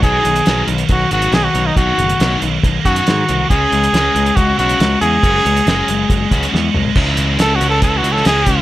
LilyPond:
<<
  \new Staff \with { instrumentName = "Trumpet" } { \time 4/4 \key b \major \tempo 4 = 139 gis'4. r8 fis'8 fis'8 gis'16 fis'8 dis'16 | fis'4. r4 fis'4. | gis'2 fis'8 fis'4 gis'8~ | gis'2. r4 |
r4 \tuplet 3/2 { a'8 fis'8 a'8 a'8 fis'8 a'8 } gis'4 | }
  \new Staff \with { instrumentName = "Distorted electric guitar" } { \clef bass \time 4/4 \key b \major b,8 fis8 ais8 fis8 ais8 fis'8 dis'8 ais8 | b,8 fis8 ais8 fis8 ais8 fis'8 dis'8 ais8 | cis8 e8 gis8 e8 gis8 e'8 cis'8 gis8 | fis8 fis8 gis8 fis8 gis8 fis'8 cis'8 gis8 |
<cis e gis cis' e'>4 <cis e gis cis' e'>8 <gis cis' e'>8 <e gis cis' e'>4 <e gis cis' e'>8 <gis cis' e'>8 | }
  \new Staff \with { instrumentName = "Overdriven electric guitar" } { \clef bass \time 4/4 \key b \major <b, dis fis>8 <b, dis>8 <b, dis fis>8 <b, dis>8 <b, dis>8 <b, dis fis>8 <b, dis>8 <b, dis>8 | <b, dis fis>8 <b, dis>8 <b, dis fis>8 <b, dis>8 <b, dis>8 <b, dis fis>8 <b, dis>8 <b, dis>8 | <cis gis cis'>8 <cis gis>8 <cis gis cis'>8 <cis gis>8 <cis gis>8 <cis gis cis'>8 <cis gis>8 <cis gis>8 | <fis gis cis'>8 <fis gis>8 <fis gis cis'>8 <fis gis>8 <fis gis>8 <fis gis cis'>8 <fis gis>8 <fis gis>8 |
<cis e gis cis'>4 <cis e gis cis'>4. <e gis cis'>8 <cis e gis cis'>8 <e gis cis'>8 | }
  \new Staff \with { instrumentName = "Picked electric bass" } { \clef bass \time 4/4 \key b \major b,,8 b,,8 b,,8 b,,8 b,,8 gis,,8 b,,8 b,,8 | b,,8 fis,,8 b,,8 b,,8 b,,8 fis,8 gis,8 c,8 | cis,8 cis,8 cis,8 cis,8 cis,8 b,,8 cis,8 e,8 | fis,,8 cis,8 fis,,8 fis,,8 fis,,8 cis,8 e,8 c,8 |
cis,8 cis,8 cis,8 cis,8 cis,8 cis,8 cis,8 cis,8 | }
  \new DrumStaff \with { instrumentName = "Drums" } \drummode { \time 4/4 <hh bd>8 hh16 hh16 <hh sn>8 hh16 hh16 <hh bd>8 hh16 hh16 <hh sn>8 hh8 | <hh bd>8 hh16 hh16 <hh sn>8 hh8 <hh bd>8 <hh bd>16 hh16 <hh sn>8 hh8 | <hh bd>8 hh16 hh16 <hh sn>8 hh16 hh16 <hh bd>8 hh16 hh16 <hh sn>8 hh8 | <hh bd>8 hh16 hh16 <hh sn>8 hh8 <hh bd>8 <hh bd>16 hh16 sn8 toml16 tomfh16 |
<cymc bd>8 hh8 <hh sn>8 hh8 <hh bd>8 hh16 sn16 <hh sn>8 <hh bd>8 | }
>>